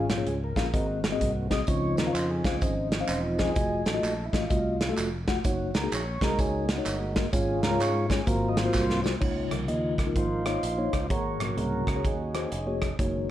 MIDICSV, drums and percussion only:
0, 0, Header, 1, 2, 480
1, 0, Start_track
1, 0, Key_signature, -5, "major"
1, 0, Tempo, 471328
1, 1712, Time_signature, 4, 2, 24, 8
1, 13550, End_track
2, 0, Start_track
2, 0, Title_t, "Drums"
2, 98, Note_on_c, 9, 38, 100
2, 98, Note_on_c, 9, 42, 73
2, 200, Note_off_c, 9, 38, 0
2, 200, Note_off_c, 9, 42, 0
2, 270, Note_on_c, 9, 42, 69
2, 372, Note_off_c, 9, 42, 0
2, 573, Note_on_c, 9, 36, 84
2, 583, Note_on_c, 9, 38, 93
2, 586, Note_on_c, 9, 42, 61
2, 674, Note_off_c, 9, 36, 0
2, 685, Note_off_c, 9, 38, 0
2, 688, Note_off_c, 9, 42, 0
2, 750, Note_on_c, 9, 36, 101
2, 755, Note_on_c, 9, 42, 75
2, 852, Note_off_c, 9, 36, 0
2, 857, Note_off_c, 9, 42, 0
2, 1057, Note_on_c, 9, 42, 72
2, 1058, Note_on_c, 9, 38, 103
2, 1159, Note_off_c, 9, 42, 0
2, 1160, Note_off_c, 9, 38, 0
2, 1233, Note_on_c, 9, 42, 91
2, 1234, Note_on_c, 9, 36, 72
2, 1335, Note_off_c, 9, 42, 0
2, 1336, Note_off_c, 9, 36, 0
2, 1536, Note_on_c, 9, 38, 100
2, 1538, Note_on_c, 9, 36, 77
2, 1542, Note_on_c, 9, 42, 60
2, 1638, Note_off_c, 9, 38, 0
2, 1640, Note_off_c, 9, 36, 0
2, 1644, Note_off_c, 9, 42, 0
2, 1700, Note_on_c, 9, 54, 75
2, 1710, Note_on_c, 9, 36, 107
2, 1711, Note_on_c, 9, 42, 94
2, 1802, Note_off_c, 9, 54, 0
2, 1812, Note_off_c, 9, 36, 0
2, 1813, Note_off_c, 9, 42, 0
2, 2010, Note_on_c, 9, 54, 49
2, 2019, Note_on_c, 9, 38, 97
2, 2019, Note_on_c, 9, 42, 70
2, 2112, Note_off_c, 9, 54, 0
2, 2121, Note_off_c, 9, 38, 0
2, 2121, Note_off_c, 9, 42, 0
2, 2191, Note_on_c, 9, 42, 69
2, 2199, Note_on_c, 9, 39, 91
2, 2199, Note_on_c, 9, 54, 84
2, 2293, Note_off_c, 9, 42, 0
2, 2301, Note_off_c, 9, 39, 0
2, 2301, Note_off_c, 9, 54, 0
2, 2489, Note_on_c, 9, 36, 86
2, 2492, Note_on_c, 9, 54, 52
2, 2496, Note_on_c, 9, 38, 97
2, 2499, Note_on_c, 9, 42, 63
2, 2591, Note_off_c, 9, 36, 0
2, 2594, Note_off_c, 9, 54, 0
2, 2598, Note_off_c, 9, 38, 0
2, 2601, Note_off_c, 9, 42, 0
2, 2661, Note_on_c, 9, 54, 62
2, 2668, Note_on_c, 9, 36, 101
2, 2670, Note_on_c, 9, 42, 77
2, 2763, Note_off_c, 9, 54, 0
2, 2769, Note_off_c, 9, 36, 0
2, 2772, Note_off_c, 9, 42, 0
2, 2972, Note_on_c, 9, 38, 102
2, 2972, Note_on_c, 9, 42, 75
2, 2978, Note_on_c, 9, 54, 43
2, 3074, Note_off_c, 9, 38, 0
2, 3074, Note_off_c, 9, 42, 0
2, 3080, Note_off_c, 9, 54, 0
2, 3142, Note_on_c, 9, 39, 95
2, 3142, Note_on_c, 9, 54, 90
2, 3147, Note_on_c, 9, 42, 94
2, 3244, Note_off_c, 9, 39, 0
2, 3244, Note_off_c, 9, 54, 0
2, 3249, Note_off_c, 9, 42, 0
2, 3449, Note_on_c, 9, 54, 49
2, 3453, Note_on_c, 9, 38, 103
2, 3456, Note_on_c, 9, 36, 78
2, 3460, Note_on_c, 9, 42, 60
2, 3551, Note_off_c, 9, 54, 0
2, 3555, Note_off_c, 9, 38, 0
2, 3558, Note_off_c, 9, 36, 0
2, 3561, Note_off_c, 9, 42, 0
2, 3621, Note_on_c, 9, 54, 79
2, 3627, Note_on_c, 9, 42, 94
2, 3628, Note_on_c, 9, 36, 105
2, 3723, Note_off_c, 9, 54, 0
2, 3729, Note_off_c, 9, 42, 0
2, 3730, Note_off_c, 9, 36, 0
2, 3927, Note_on_c, 9, 54, 50
2, 3933, Note_on_c, 9, 38, 99
2, 3933, Note_on_c, 9, 42, 73
2, 4029, Note_off_c, 9, 54, 0
2, 4035, Note_off_c, 9, 38, 0
2, 4035, Note_off_c, 9, 42, 0
2, 4110, Note_on_c, 9, 42, 74
2, 4117, Note_on_c, 9, 39, 92
2, 4117, Note_on_c, 9, 54, 92
2, 4212, Note_off_c, 9, 42, 0
2, 4219, Note_off_c, 9, 39, 0
2, 4219, Note_off_c, 9, 54, 0
2, 4411, Note_on_c, 9, 36, 87
2, 4419, Note_on_c, 9, 54, 54
2, 4421, Note_on_c, 9, 38, 95
2, 4424, Note_on_c, 9, 42, 66
2, 4513, Note_off_c, 9, 36, 0
2, 4521, Note_off_c, 9, 54, 0
2, 4523, Note_off_c, 9, 38, 0
2, 4526, Note_off_c, 9, 42, 0
2, 4585, Note_on_c, 9, 54, 66
2, 4589, Note_on_c, 9, 36, 100
2, 4595, Note_on_c, 9, 42, 78
2, 4687, Note_off_c, 9, 54, 0
2, 4691, Note_off_c, 9, 36, 0
2, 4697, Note_off_c, 9, 42, 0
2, 4896, Note_on_c, 9, 38, 105
2, 4896, Note_on_c, 9, 42, 77
2, 4900, Note_on_c, 9, 54, 46
2, 4998, Note_off_c, 9, 38, 0
2, 4998, Note_off_c, 9, 42, 0
2, 5002, Note_off_c, 9, 54, 0
2, 5067, Note_on_c, 9, 39, 89
2, 5067, Note_on_c, 9, 42, 90
2, 5067, Note_on_c, 9, 54, 93
2, 5168, Note_off_c, 9, 42, 0
2, 5169, Note_off_c, 9, 39, 0
2, 5169, Note_off_c, 9, 54, 0
2, 5372, Note_on_c, 9, 54, 46
2, 5373, Note_on_c, 9, 38, 103
2, 5376, Note_on_c, 9, 36, 76
2, 5380, Note_on_c, 9, 42, 63
2, 5474, Note_off_c, 9, 54, 0
2, 5475, Note_off_c, 9, 38, 0
2, 5478, Note_off_c, 9, 36, 0
2, 5482, Note_off_c, 9, 42, 0
2, 5542, Note_on_c, 9, 54, 76
2, 5546, Note_on_c, 9, 42, 98
2, 5548, Note_on_c, 9, 36, 109
2, 5644, Note_off_c, 9, 54, 0
2, 5648, Note_off_c, 9, 42, 0
2, 5650, Note_off_c, 9, 36, 0
2, 5848, Note_on_c, 9, 54, 48
2, 5854, Note_on_c, 9, 38, 106
2, 5854, Note_on_c, 9, 42, 71
2, 5950, Note_off_c, 9, 54, 0
2, 5955, Note_off_c, 9, 42, 0
2, 5956, Note_off_c, 9, 38, 0
2, 6027, Note_on_c, 9, 42, 76
2, 6041, Note_on_c, 9, 39, 92
2, 6041, Note_on_c, 9, 54, 87
2, 6129, Note_off_c, 9, 42, 0
2, 6143, Note_off_c, 9, 39, 0
2, 6143, Note_off_c, 9, 54, 0
2, 6328, Note_on_c, 9, 36, 89
2, 6335, Note_on_c, 9, 38, 95
2, 6336, Note_on_c, 9, 54, 50
2, 6338, Note_on_c, 9, 42, 67
2, 6429, Note_off_c, 9, 36, 0
2, 6437, Note_off_c, 9, 38, 0
2, 6437, Note_off_c, 9, 54, 0
2, 6439, Note_off_c, 9, 42, 0
2, 6505, Note_on_c, 9, 36, 100
2, 6508, Note_on_c, 9, 42, 80
2, 6508, Note_on_c, 9, 54, 66
2, 6607, Note_off_c, 9, 36, 0
2, 6610, Note_off_c, 9, 42, 0
2, 6610, Note_off_c, 9, 54, 0
2, 6810, Note_on_c, 9, 42, 76
2, 6811, Note_on_c, 9, 38, 112
2, 6820, Note_on_c, 9, 54, 44
2, 6912, Note_off_c, 9, 42, 0
2, 6913, Note_off_c, 9, 38, 0
2, 6922, Note_off_c, 9, 54, 0
2, 6984, Note_on_c, 9, 42, 97
2, 6988, Note_on_c, 9, 39, 92
2, 6988, Note_on_c, 9, 54, 95
2, 7086, Note_off_c, 9, 42, 0
2, 7090, Note_off_c, 9, 39, 0
2, 7090, Note_off_c, 9, 54, 0
2, 7291, Note_on_c, 9, 38, 106
2, 7293, Note_on_c, 9, 54, 52
2, 7294, Note_on_c, 9, 36, 81
2, 7297, Note_on_c, 9, 42, 58
2, 7392, Note_off_c, 9, 38, 0
2, 7395, Note_off_c, 9, 54, 0
2, 7396, Note_off_c, 9, 36, 0
2, 7399, Note_off_c, 9, 42, 0
2, 7464, Note_on_c, 9, 54, 71
2, 7466, Note_on_c, 9, 36, 116
2, 7467, Note_on_c, 9, 42, 97
2, 7566, Note_off_c, 9, 54, 0
2, 7568, Note_off_c, 9, 36, 0
2, 7569, Note_off_c, 9, 42, 0
2, 7771, Note_on_c, 9, 38, 104
2, 7771, Note_on_c, 9, 42, 74
2, 7771, Note_on_c, 9, 54, 50
2, 7873, Note_off_c, 9, 38, 0
2, 7873, Note_off_c, 9, 42, 0
2, 7873, Note_off_c, 9, 54, 0
2, 7945, Note_on_c, 9, 42, 75
2, 7960, Note_on_c, 9, 39, 92
2, 7960, Note_on_c, 9, 54, 84
2, 8047, Note_off_c, 9, 42, 0
2, 8061, Note_off_c, 9, 39, 0
2, 8061, Note_off_c, 9, 54, 0
2, 8247, Note_on_c, 9, 36, 82
2, 8254, Note_on_c, 9, 54, 52
2, 8256, Note_on_c, 9, 38, 92
2, 8259, Note_on_c, 9, 42, 70
2, 8349, Note_off_c, 9, 36, 0
2, 8356, Note_off_c, 9, 54, 0
2, 8358, Note_off_c, 9, 38, 0
2, 8361, Note_off_c, 9, 42, 0
2, 8422, Note_on_c, 9, 54, 66
2, 8425, Note_on_c, 9, 36, 102
2, 8430, Note_on_c, 9, 42, 83
2, 8524, Note_off_c, 9, 54, 0
2, 8526, Note_off_c, 9, 36, 0
2, 8531, Note_off_c, 9, 42, 0
2, 8728, Note_on_c, 9, 38, 107
2, 8728, Note_on_c, 9, 42, 76
2, 8735, Note_on_c, 9, 54, 43
2, 8830, Note_off_c, 9, 38, 0
2, 8830, Note_off_c, 9, 42, 0
2, 8837, Note_off_c, 9, 54, 0
2, 8902, Note_on_c, 9, 39, 94
2, 8902, Note_on_c, 9, 54, 96
2, 8906, Note_on_c, 9, 38, 57
2, 8907, Note_on_c, 9, 36, 78
2, 9004, Note_off_c, 9, 39, 0
2, 9004, Note_off_c, 9, 54, 0
2, 9008, Note_off_c, 9, 38, 0
2, 9009, Note_off_c, 9, 36, 0
2, 9065, Note_on_c, 9, 38, 66
2, 9167, Note_off_c, 9, 38, 0
2, 9204, Note_on_c, 9, 54, 48
2, 9223, Note_on_c, 9, 38, 98
2, 9306, Note_off_c, 9, 54, 0
2, 9325, Note_off_c, 9, 38, 0
2, 9383, Note_on_c, 9, 49, 72
2, 9385, Note_on_c, 9, 36, 99
2, 9485, Note_off_c, 9, 49, 0
2, 9487, Note_off_c, 9, 36, 0
2, 9688, Note_on_c, 9, 37, 88
2, 9688, Note_on_c, 9, 42, 60
2, 9790, Note_off_c, 9, 37, 0
2, 9790, Note_off_c, 9, 42, 0
2, 9861, Note_on_c, 9, 42, 64
2, 9963, Note_off_c, 9, 42, 0
2, 10166, Note_on_c, 9, 36, 75
2, 10173, Note_on_c, 9, 37, 81
2, 10176, Note_on_c, 9, 42, 62
2, 10268, Note_off_c, 9, 36, 0
2, 10275, Note_off_c, 9, 37, 0
2, 10278, Note_off_c, 9, 42, 0
2, 10344, Note_on_c, 9, 36, 89
2, 10346, Note_on_c, 9, 42, 70
2, 10446, Note_off_c, 9, 36, 0
2, 10448, Note_off_c, 9, 42, 0
2, 10650, Note_on_c, 9, 37, 96
2, 10650, Note_on_c, 9, 42, 64
2, 10752, Note_off_c, 9, 37, 0
2, 10752, Note_off_c, 9, 42, 0
2, 10826, Note_on_c, 9, 42, 89
2, 10928, Note_off_c, 9, 42, 0
2, 11132, Note_on_c, 9, 37, 89
2, 11134, Note_on_c, 9, 36, 68
2, 11139, Note_on_c, 9, 42, 55
2, 11234, Note_off_c, 9, 37, 0
2, 11236, Note_off_c, 9, 36, 0
2, 11241, Note_off_c, 9, 42, 0
2, 11307, Note_on_c, 9, 36, 94
2, 11307, Note_on_c, 9, 42, 86
2, 11408, Note_off_c, 9, 36, 0
2, 11409, Note_off_c, 9, 42, 0
2, 11613, Note_on_c, 9, 42, 65
2, 11614, Note_on_c, 9, 37, 85
2, 11715, Note_off_c, 9, 37, 0
2, 11715, Note_off_c, 9, 42, 0
2, 11789, Note_on_c, 9, 42, 63
2, 11891, Note_off_c, 9, 42, 0
2, 12089, Note_on_c, 9, 36, 73
2, 12099, Note_on_c, 9, 37, 92
2, 12102, Note_on_c, 9, 42, 59
2, 12191, Note_off_c, 9, 36, 0
2, 12201, Note_off_c, 9, 37, 0
2, 12204, Note_off_c, 9, 42, 0
2, 12267, Note_on_c, 9, 36, 88
2, 12271, Note_on_c, 9, 42, 70
2, 12369, Note_off_c, 9, 36, 0
2, 12372, Note_off_c, 9, 42, 0
2, 12573, Note_on_c, 9, 37, 92
2, 12573, Note_on_c, 9, 42, 63
2, 12674, Note_off_c, 9, 42, 0
2, 12675, Note_off_c, 9, 37, 0
2, 12748, Note_on_c, 9, 42, 84
2, 12850, Note_off_c, 9, 42, 0
2, 13052, Note_on_c, 9, 37, 92
2, 13056, Note_on_c, 9, 36, 68
2, 13059, Note_on_c, 9, 42, 56
2, 13154, Note_off_c, 9, 37, 0
2, 13158, Note_off_c, 9, 36, 0
2, 13161, Note_off_c, 9, 42, 0
2, 13229, Note_on_c, 9, 36, 101
2, 13229, Note_on_c, 9, 42, 83
2, 13331, Note_off_c, 9, 36, 0
2, 13331, Note_off_c, 9, 42, 0
2, 13550, End_track
0, 0, End_of_file